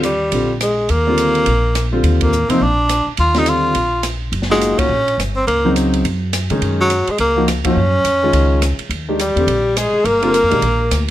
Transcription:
Already playing: D#2
0.03 G3, hi-hat pedal, ride
0.32 A#1 D3 G3 C4 F4, ride
0.61 G#3, cross-stick, hi-hat pedal, ride
0.89 D#2 A#3, ride
1.07 D3 G3 C4 F4
1.18 hi-hat pedal, ride
1.35 ride
1.46 A#1, ride
1.75 cross-stick, hi-hat pedal, ride
1.92 D3 G3 C4 F4
2.03 D#2, ride
2.21 A#3, kick, ride
2.33 hi-hat pedal
2.49 E2 C3 F3 A#3 C4 D#4, ride
2.61 A#1 D4
2.89 cross-stick, hi-hat pedal, ride
3.07 muted upright bass stroke
3.17 D#2 F4, ride
3.34 D3 G3 C4 D#4 F4, snare, ride
3.46 F4, hi-hat pedal, ride
3.75 A#1, ride
4.03 cross-stick, hi-hat pedal, ride
4.32 F#1, ride
4.42 snare
4.50 G#3 A#3 D#4 F4 F#4, snare
4.61 hi-hat pedal, ride
4.78 C#4, muted upright bass stroke, kick, ride
4.89 A#1
5.08 ride
5.18 G1, cross-stick, hi-hat pedal, ride
5.36 C4
5.47 C#2 A#3, ride
5.65 C#3 F#3 C4 D#4
5.76 hi-hat pedal, ride
5.94 ride
6.04 F#2, ride
6.33 cross-stick, hi-hat pedal, ride
6.50 C#3 D#3 G#3 C#4 D#4, ride
6.62 F#2, ride
6.81 F#3
6.90 hi-hat pedal, ride
7.07 G#3, muted upright bass stroke, ride
7.18 C#2 A#3, ride
7.36 F3 A#3 D#4 F#4
7.48 cross-stick, hi-hat pedal, ride
7.64 F2 F3 A#3 C#4 D#4 F#4, kick, ride
7.76 F#2
8.04 F2, hi-hat pedal, ride
8.23 D#3 G#3 C#4 F4
8.32 C#2, ride
8.62 cross-stick, hi-hat pedal, ride
8.79 muted upright bass stroke, ride
8.89 D#2, ride
9.09 D#3 G#3 D4 G4
9.19 G3 G4, hi-hat pedal, ride
9.36 E2 D3 G3 C4 G4, ride
9.47 A#1, ride
9.76 G#3 G#4, cross-stick, hi-hat pedal, ride
9.93 muted upright bass stroke
10.04 G1 A#3 A#4, ride
10.22 D3 G3 C4 F4, ride
10.34 hi-hat pedal, ride
10.43 F2
10.50 A#2 D#3 G#3 D4 G4, ride
10.62 A#1, ride
10.91 D2, cross-stick, hi-hat pedal, ride

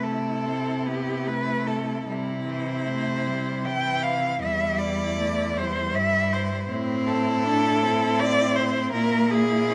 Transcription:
Already playing: C3 A3 E4
0.03 A4
0.46 C4
0.86 B3 G4
1.26 A3 B4
1.67 A4
2.07 C3 G3 E4
2.46 E3 C5
2.86 A3
3.26 G3
3.65 E3 E4 G5
4.03 F5
4.41 E2 G3 E4 E5
4.79 D5
5.17 A3
5.56 G3 C5
5.93 G2 E4 E5
6.33 C5
6.69 A2 C4 E4
7.06 A4
7.44 D4
7.82 C4
8.20 D5
8.56 C5
8.92 A#2 A#3 E4 A#4
9.30 G#4
9.70 C#4

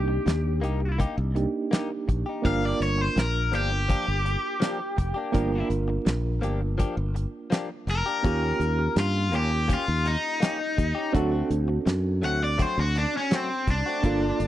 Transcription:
Already playing: C2 A#3 D4 D#4 G4
0.08 muted clean electric guitar stroke
0.26 D#2, muted clean electric guitar stroke, snare, closed hi-hat
0.61 C2 A#3 D#4 G4, closed hi-hat
0.80 muted clean electric guitar stroke
0.98 A#3 D#4 G4, kick, closed hi-hat
1.17 C2, muted clean electric guitar stroke
1.35 A#3 D4 D#4 G4, muted clean electric guitar stroke, closed hi-hat
1.71 A#3 D#4 G4, snare, closed hi-hat
1.90 muted clean electric guitar stroke
2.08 A#1, muted clean electric guitar stroke, kick, closed hi-hat
2.26 D#4 G4
2.42 G1 F3 A#3 D4 F4 G4 A#4 F5, kick, closed hi-hat
2.63 A#3 D4 G4 D5
2.80 G1 C#5, muted clean electric guitar stroke, closed hi-hat
2.98 C5, muted clean electric guitar stroke
3.16 A#1 A#4, muted clean electric guitar stroke, snare, closed hi-hat
3.52 G1 F3 A#3 D4 G4, closed hi-hat
3.71 muted clean electric guitar stroke
3.88 F3 A#3 D4 G4, kick, closed hi-hat
4.07 G1, muted clean electric guitar stroke
4.25 muted clean electric guitar stroke, closed hi-hat
4.60 F3 A#3 D4 G4, snare, closed hi-hat
4.79 muted clean electric guitar stroke
4.97 F1, muted clean electric guitar stroke, kick, closed hi-hat
5.14 A#3 D4 G4
5.32 G1 F3 A#3 D4 F4 G4 A#4, kick, closed hi-hat
5.52 A#3 D4 G4
5.70 G1, muted clean electric guitar stroke, closed hi-hat
5.88 muted clean electric guitar stroke
6.05 A#1, muted clean electric guitar stroke, snare, closed hi-hat
6.41 G1 F3 A#3 D4 G4, closed hi-hat
6.61 muted clean electric guitar stroke
6.78 F3 A#3 D4 G4, kick, closed hi-hat
6.96 G1, muted clean electric guitar stroke
7.15 muted clean electric guitar stroke, closed hi-hat
7.50 F3 A#3 D4 G4, snare, closed hi-hat
7.70 muted clean electric guitar stroke
7.87 F1 A#4, muted clean electric guitar stroke, closed hi-hat
8.06 A#3 D4 G4
8.23 D#2 A#3 C#4 F4 G4, kick, closed hi-hat
8.42 C#4 G4
8.60 D#2, muted clean electric guitar stroke, closed hi-hat
8.79 muted clean electric guitar stroke
8.96 G2 F4, muted clean electric guitar stroke, snare, closed hi-hat
9.32 D#2 A#3 C#4 G4, closed hi-hat
9.36 G4
9.51 muted clean electric guitar stroke
9.68 A#3 C#4 G4, kick, closed hi-hat
9.74 F4
9.87 D#2, muted clean electric guitar stroke
10.04 D#4, muted clean electric guitar stroke, closed hi-hat
10.40 A#3 C#4 G4, snare, closed hi-hat
10.59 muted clean electric guitar stroke
10.77 D#2, muted clean electric guitar stroke, kick, closed hi-hat
10.95 C#4 G4
11.13 D2 F#3 A3 C4 D4 F#4 A4, kick, closed hi-hat
11.32 A3 C4 F#4
11.50 D2, muted clean electric guitar stroke, closed hi-hat
11.68 muted clean electric guitar stroke
11.86 F#2, muted clean electric guitar stroke, snare, closed hi-hat
12.22 D2 F#3 A3 C4 F#4 F#5, closed hi-hat
12.41 D5, muted clean electric guitar stroke
12.58 F#3 A3 C4 F#4, kick, closed hi-hat
12.62 C5
12.77 D2 F#4, muted clean electric guitar stroke
12.95 D4, muted clean electric guitar stroke, closed hi-hat
13.17 C#4
13.31 F#3 A3 C4 F#4, snare, closed hi-hat
13.35 C4
13.50 muted clean electric guitar stroke
13.67 C2 D4, muted clean electric guitar stroke, kick, closed hi-hat
13.86 A3 C4 F#4
14.03 G1 F3 A#3 D4 F4 A4, kick, closed hi-hat
14.22 A#3 D4 F4
14.39 G1, muted clean electric guitar stroke, closed hi-hat

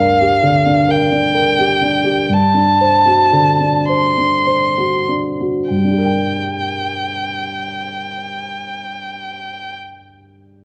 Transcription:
Already playing: G2 D4 A#4 F5
0.21 G4
0.43 D3
0.66 D4
0.89 A#4 G5
1.12 D4
1.35 A#4
1.59 G4
1.82 D4
2.04 G4
2.29 G2 A5
2.54 D4
2.81 C5
3.06 F#4
3.33 D3
3.60 D4
3.89 C5 C6
4.18 D4
4.47 C5
4.78 F#4
5.09 D4
5.41 F#4
5.70 G2 G5
5.76 G3
5.84 D4
5.91 G4
5.98 A#4
6.05 G5

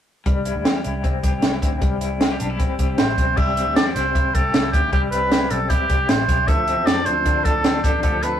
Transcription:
0.26 C2 G3, kick, closed hi-hat
0.45 E4, closed hi-hat
0.55 D2
0.65 E2 G4, snare, closed hi-hat
0.84 C2 E4, closed hi-hat
1.04 C3 C4, kick, closed hi-hat
1.23 C2 G4, kick, closed hi-hat
1.42 C2 E4, snare, closed hi-hat
1.62 D2 C4, kick, closed hi-hat
1.81 C2 G3, kick, closed hi-hat
2.01 E4, closed hi-hat
2.21 F4, snare, closed hi-hat
2.31 G4
2.40 B1 D4, closed hi-hat
2.50 E4
2.59 C4, kick, closed hi-hat
2.79 C2 G4, kick, closed hi-hat
2.98 A1 E4 C5, snare, closed hi-hat
3.17 B1 C4, kick, closed hi-hat
3.37 C2 G3 G4 E5, kick, crash
3.57 C4, closed hi-hat
3.67 D2
3.76 E2 D4 D5, snare, closed hi-hat
3.86 E4
3.95 C2 C4 C5, snare, closed hi-hat
4.15 C3 E4, kick, closed hi-hat
4.34 C2 G4 A4, kick, closed hi-hat
4.54 C2 E4, snare, closed hi-hat
4.72 D2 G4, kick, closed hi-hat
4.92 C2 G3 G4, kick, closed hi-hat
5.11 C4 B4, closed hi-hat
5.31 E4, snare, closed hi-hat
5.50 B1 C4 A4, closed hi-hat
5.69 E4 G4, kick, closed hi-hat
5.89 C2 G4, kick, closed hi-hat
6.09 A1 E4 C5, snare, closed hi-hat
6.29 B1 G4, kick, closed hi-hat
6.47 D2 F3 A4 E5, kick, closed hi-hat
6.67 C4, closed hi-hat
6.78 E2
6.86 F2 D4 D5, snare, closed hi-hat
7.05 D2 C4 C5, closed hi-hat
7.26 D3 D4, kick, closed hi-hat
7.44 D2 A4, kick, closed hi-hat
7.64 D2 D4, snare, closed hi-hat
7.83 E2 G4 A4, kick, closed hi-hat
8.03 D2 F3 G4 A4, kick, closed hi-hat
8.23 C4 B4, closed hi-hat

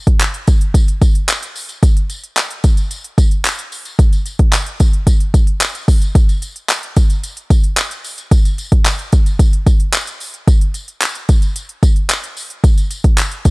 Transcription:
0.07 kick, closed hi-hat
0.20 clap, closed hi-hat, tambourine
0.34 closed hi-hat
0.47 kick, closed hi-hat, tambourine
0.61 closed hi-hat
0.74 kick, closed hi-hat, tambourine
0.88 closed hi-hat
1.01 kick, closed hi-hat, tambourine
1.15 closed hi-hat
1.29 clap, closed hi-hat, tambourine
1.42 closed hi-hat, tambourine
1.55 open hi-hat, tambourine
1.69 closed hi-hat, tambourine
1.83 kick, closed hi-hat, tambourine
1.97 closed hi-hat
2.10 closed hi-hat, tambourine
2.24 closed hi-hat
2.37 clap, closed hi-hat, tambourine
2.51 closed hi-hat
2.64 kick, closed hi-hat, tambourine
2.77 closed hi-hat, tambourine
2.91 closed hi-hat, tambourine
3.04 closed hi-hat
3.18 kick, closed hi-hat, tambourine
3.31 closed hi-hat
3.45 clap, closed hi-hat, tambourine
3.59 closed hi-hat, tambourine
3.72 open hi-hat, tambourine
3.85 closed hi-hat, tambourine
3.99 kick, closed hi-hat, tambourine
4.13 closed hi-hat, tambourine
4.26 closed hi-hat, tambourine
4.39 kick, closed hi-hat
4.53 clap, closed hi-hat, tambourine
4.66 closed hi-hat
4.80 kick, closed hi-hat, tambourine
4.93 closed hi-hat
5.07 kick, closed hi-hat, tambourine
5.20 closed hi-hat
5.34 kick, closed hi-hat, tambourine
5.47 closed hi-hat
5.61 clap, closed hi-hat, tambourine
5.75 closed hi-hat, tambourine
5.88 kick, open hi-hat, tambourine
6.01 closed hi-hat, tambourine
6.15 kick, closed hi-hat, tambourine
6.29 closed hi-hat, tambourine
6.42 closed hi-hat, tambourine
6.56 closed hi-hat
6.69 clap, closed hi-hat, tambourine
6.83 closed hi-hat
6.96 kick, closed hi-hat, tambourine
7.10 closed hi-hat, tambourine
7.23 closed hi-hat, tambourine
7.37 closed hi-hat
7.50 kick, closed hi-hat, tambourine
7.64 closed hi-hat
7.77 clap, closed hi-hat, tambourine
7.91 closed hi-hat, tambourine
8.04 open hi-hat, tambourine
8.18 closed hi-hat, tambourine
8.31 kick, closed hi-hat, tambourine
8.45 closed hi-hat, tambourine
8.58 closed hi-hat, tambourine
8.72 kick, closed hi-hat
8.85 clap, closed hi-hat, tambourine
8.99 closed hi-hat
9.12 kick, closed hi-hat, tambourine
9.26 closed hi-hat, tambourine
9.39 kick, closed hi-hat, tambourine
9.53 closed hi-hat
9.67 kick, closed hi-hat, tambourine
9.80 closed hi-hat
9.93 clap, closed hi-hat, tambourine
10.07 closed hi-hat, tambourine
10.20 open hi-hat, tambourine
10.34 closed hi-hat
10.48 kick, closed hi-hat, tambourine
10.61 closed hi-hat
10.74 closed hi-hat, tambourine
10.88 closed hi-hat
11.01 clap, closed hi-hat, tambourine
11.15 closed hi-hat
11.29 kick, closed hi-hat, tambourine
11.42 closed hi-hat, tambourine
11.56 closed hi-hat, tambourine
11.69 closed hi-hat
11.83 kick, closed hi-hat, tambourine
11.96 closed hi-hat
12.10 clap, closed hi-hat, tambourine
12.24 closed hi-hat
12.37 open hi-hat, tambourine
12.50 closed hi-hat
12.64 kick, closed hi-hat, tambourine
12.77 closed hi-hat, tambourine
12.91 closed hi-hat, tambourine
13.04 kick, closed hi-hat
13.18 clap, closed hi-hat, tambourine
13.31 closed hi-hat
13.45 kick, closed hi-hat, tambourine

